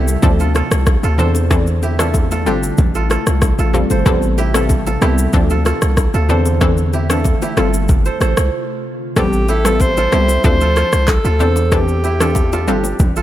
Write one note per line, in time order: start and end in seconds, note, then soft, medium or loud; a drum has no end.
0.00 0.17 C2 loud
0.00 0.47 E4 medium
0.00 1.33 G4 medium
0.00 0.39 A4 medium
0.08 shaker medium
0.22 0.63 D2 loud
0.22 1.11 F3 medium
0.22 1.11 C4 medium
0.22 1.11 D4 medium
0.22 1.11 A4 loud
0.22 kick loud
0.22 low conga medium
0.22 shaker medium
0.40 0.56 F4 medium
0.40 0.55 A4 medium
0.40 shaker medium
0.55 1.04 F4 medium
0.55 1.03 A4 medium
0.55 cross-stick medium
0.55 low bongo medium
0.55 shaker medium
0.71 0.98 C2 medium
0.71 cross-stick medium
0.71 shaker medium
0.87 kick medium
0.87 cross-stick medium
0.87 high bongo medium
0.87 shaker medium
1.03 1.20 D2 medium
1.03 1.90 F4 medium
1.03 1.20 A4 medium
1.03 shaker medium
1.18 2.48 E2 loud
1.18 1.48 E3 medium
1.18 1.48 C4 medium
1.18 1.48 D4 medium
1.18 1.48 A4 medium
1.18 1.99 A4 medium
1.18 2.38 C5 medium
1.18 low conga medium
1.18 shaker medium
1.35 high bongo medium
1.35 shaker medium
1.50 1.66 E3 loud
1.50 1.66 C4 medium
1.50 1.66 D4 medium
1.50 1.66 A4 loud
1.50 kick loud
1.50 cross-stick medium
1.50 low conga medium
1.50 shaker medium
1.67 shaker soft
1.83 2.06 E4 medium
1.83 2.46 G4 medium
1.83 high bongo medium
1.83 shaker medium
1.99 2.13 E3 medium
1.99 2.13 C4 medium
1.99 2.13 D4 medium
1.99 2.32 F4 medium
1.99 2.13 A4 medium
1.99 2.31 A4 medium
1.99 cross-stick loud
1.99 shaker medium
2.14 kick medium
2.14 high bongo medium
2.14 shaker medium
2.31 2.96 F4 medium
2.31 2.95 A4 medium
2.31 low bongo medium
2.31 shaker medium
2.46 2.73 G1 loud
2.46 4.04 C3 medium
2.46 2.62 G3 medium
2.46 4.04 A3 medium
2.46 2.62 C4 medium
2.46 4.15 D4 medium
2.46 4.04 F4 medium
2.46 2.62 F4 medium
2.46 3.88 G4 medium
2.46 2.62 A4 medium
2.46 shaker medium
2.63 shaker medium
2.78 3.18 A1 medium
2.78 kick loud
2.78 low conga medium
2.78 shaker medium
2.95 3.11 F4 medium
2.95 3.10 A4 medium
2.95 shaker medium
3.10 3.59 F4 medium
3.10 3.58 A4 medium
3.10 cross-stick medium
3.10 low bongo medium
3.10 shaker medium
3.27 3.53 C2 medium
3.27 cross-stick medium
3.27 shaker medium
3.42 kick loud
3.42 cross-stick medium
3.42 high bongo medium
3.42 shaker medium
3.59 3.85 A1 medium
3.59 4.45 F4 medium
3.59 3.91 A4 medium
3.59 shaker medium
3.73 4.03 G3 medium
3.73 4.03 C4 medium
3.73 4.04 F4 medium
3.73 4.04 A4 medium
3.73 low conga medium
3.73 shaker medium
3.90 4.03 G1 medium
3.90 4.54 A4 medium
3.90 5.10 C5 medium
3.90 high bongo medium
3.90 shaker medium
4.06 4.98 A1 loud
4.06 4.21 G3 medium
4.06 4.21 B3 medium
4.06 4.21 C4 medium
4.06 4.21 A4 loud
4.06 kick loud
4.06 cross-stick medium
4.06 low conga medium
4.06 shaker medium
4.22 shaker soft
4.38 4.61 E4 medium
4.38 5.02 G4 medium
4.38 high bongo medium
4.38 shaker medium
4.54 4.69 G3 medium
4.54 4.69 B3 medium
4.54 4.69 C4 medium
4.54 4.87 F4 soft
4.54 4.86 A4 medium
4.54 4.69 A4 medium
4.54 cross-stick loud
4.54 shaker loud
4.69 kick medium
4.69 high bongo medium
4.69 shaker medium
4.87 5.09 F4 medium
4.87 5.50 A4 medium
4.87 low bongo medium
4.87 shaker medium
5.02 5.28 C2 loud
5.02 5.17 G3 medium
5.02 5.17 B3 medium
5.02 5.17 C4 medium
5.02 5.57 E4 medium
5.02 6.43 G4 medium
5.02 5.17 A4 medium
5.02 cross-stick medium
5.02 shaker medium
5.18 shaker medium
5.33 5.73 D2 loud
5.33 7.55 D3 medium
5.33 6.22 F3 medium
5.33 6.22 C4 medium
5.33 6.22 D4 medium
5.33 6.22 A4 loud
5.33 kick loud
5.33 low conga medium
5.33 shaker medium
5.50 5.66 F4 medium
5.50 5.65 A4 medium
5.50 shaker medium
5.65 6.15 F4 medium
5.65 6.14 A4 medium
5.65 cross-stick medium
5.65 low bongo medium
5.65 shaker medium
5.82 6.08 C2 medium
5.82 cross-stick medium
5.82 shaker medium
5.97 kick medium
5.97 cross-stick medium
5.97 high bongo medium
5.97 shaker medium
6.14 6.31 D2 medium
6.14 7.00 F4 medium
6.14 6.30 A4 medium
6.14 shaker medium
6.29 7.34 E2 loud
6.29 6.59 E3 medium
6.29 9.14 A3 medium
6.29 6.59 C4 medium
6.29 6.59 D4 medium
6.29 6.59 A4 medium
6.29 7.10 A4 medium
6.29 7.48 C5 medium
6.29 low conga medium
6.29 shaker medium
6.46 high bongo medium
6.46 shaker medium
6.61 6.76 E3 medium
6.61 6.77 C4 medium
6.61 6.77 D4 medium
6.61 6.77 A4 loud
6.61 kick loud
6.61 cross-stick medium
6.61 low conga medium
6.61 shaker medium
6.78 shaker medium
6.93 7.17 E4 medium
6.93 7.42 G4 medium
6.93 high bongo medium
6.93 shaker medium
7.09 7.24 E3 medium
7.09 7.24 C4 medium
7.09 7.24 D4 medium
7.09 7.49 F4 medium
7.09 7.24 A4 medium
7.09 7.57 A4 medium
7.09 cross-stick loud
7.09 shaker loud
7.24 kick medium
7.24 high bongo medium
7.24 shaker medium
7.42 7.64 E4 medium
7.42 8.83 G4 medium
7.42 low bongo medium
7.42 shaker medium
7.57 8.09 G1 loud
7.57 9.15 C3 medium
7.57 7.72 G3 medium
7.57 7.72 C4 medium
7.57 9.15 F4 medium
7.57 7.72 F4 medium
7.57 9.09 F4 medium
7.57 8.06 A4 medium
7.57 7.73 A4 medium
7.57 cross-stick medium
7.57 shaker medium
7.74 shaker medium
7.88 kick loud
7.88 low conga medium
7.88 shaker medium
8.05 8.21 A4 medium
8.05 8.21 C5 medium
8.05 shaker medium
8.20 8.34 A1 medium
8.20 9.54 A4 medium
8.20 9.40 C5 medium
8.20 cross-stick medium
8.20 low bongo medium
8.20 shaker medium
8.37 8.50 C2 medium
8.37 cross-stick loud
8.37 shaker medium
9.16 10.08 A1 loud
9.16 9.32 G3 medium
9.16 9.32 B3 medium
9.16 9.32 C4 medium
9.16 9.51 G4 loud
9.16 9.32 A4 loud
9.16 kick loud
9.16 cross-stick medium
9.16 low conga medium
9.16 shaker medium
9.33 shaker soft
9.48 9.72 E4 medium
9.48 10.12 G4 medium
9.48 9.83 A4 loud
9.48 high bongo medium
9.48 shaker medium
9.65 9.79 G3 medium
9.65 9.79 B3 medium
9.65 9.79 C4 medium
9.65 9.98 F4 soft
9.65 9.97 A4 medium
9.65 9.79 A4 medium
9.65 cross-stick loud
9.65 shaker loud
9.80 10.45 C5 loud
9.80 kick medium
9.80 high bongo medium
9.80 shaker medium
9.97 10.19 F4 medium
9.97 10.61 A4 medium
9.97 low bongo medium
9.97 shaker medium
10.12 10.38 C2 medium
10.12 10.27 G3 medium
10.12 10.28 B3 medium
10.12 10.28 C4 medium
10.12 10.68 E4 medium
10.12 11.54 G4 medium
10.12 10.28 A4 medium
10.12 cross-stick medium
10.12 shaker medium
10.28 low bongo medium
10.28 shaker medium
10.44 10.84 D2 loud
10.44 11.32 F3 medium
10.44 11.33 C4 medium
10.44 11.33 D4 medium
10.44 11.33 A4 loud
10.44 11.11 C5 loud
10.44 kick loud
10.44 low conga medium
10.44 shaker medium
10.61 10.77 F4 medium
10.61 10.76 A4 medium
10.61 shaker medium
10.76 11.25 F4 medium
10.76 11.25 A4 medium
10.76 cross-stick medium
10.76 low bongo medium
10.76 shaker medium
10.93 11.19 C2 medium
10.93 cross-stick medium
10.93 shaker medium
11.08 11.74 A4 loud
11.08 kick loud
11.08 cross-stick medium
11.08 clap loud
11.08 high bongo medium
11.08 shaker medium
11.25 11.42 D2 medium
11.25 12.11 F4 medium
11.25 11.41 A4 medium
11.25 shaker medium
11.39 12.69 E2 loud
11.39 11.69 E3 medium
11.39 11.70 C4 medium
11.39 11.70 D4 medium
11.39 11.70 A4 medium
11.39 12.20 A4 medium
11.39 12.59 C5 medium
11.39 low conga medium
11.39 shaker medium
11.56 high bongo medium
11.56 shaker medium
11.72 11.87 E3 medium
11.72 11.87 C4 medium
11.72 11.87 D4 medium
11.72 13.00 G4 medium
11.72 11.87 A4 loud
11.72 kick loud
11.72 cross-stick medium
11.72 low conga medium
11.72 shaker medium
11.88 shaker soft
12.04 12.28 E4 medium
12.04 12.67 G4 medium
12.04 high bongo medium
12.04 shaker medium
12.20 12.34 E3 medium
12.20 12.35 C4 medium
12.20 12.35 D4 medium
12.20 12.53 F4 medium
12.20 12.52 A4 medium
12.20 12.35 A4 medium
12.20 cross-stick loud
12.20 shaker loud
12.35 kick medium
12.35 high bongo medium
12.35 shaker medium
12.53 13.17 F4 medium
12.53 13.16 A4 medium
12.53 low bongo medium
12.53 shaker medium
12.68 12.94 G1 loud
12.68 12.83 G3 medium
12.68 12.83 C4 medium
12.68 13.22 D4 medium
12.68 12.83 F4 medium
12.68 13.22 G4 medium
12.68 12.83 A4 medium
12.68 shaker medium
12.84 low bongo medium
12.84 shaker medium
12.99 13.22 A1 medium
12.99 kick loud
12.99 low conga medium
12.99 shaker medium
13.16 13.22 F4 medium
13.16 13.22 A4 medium
13.16 shaker medium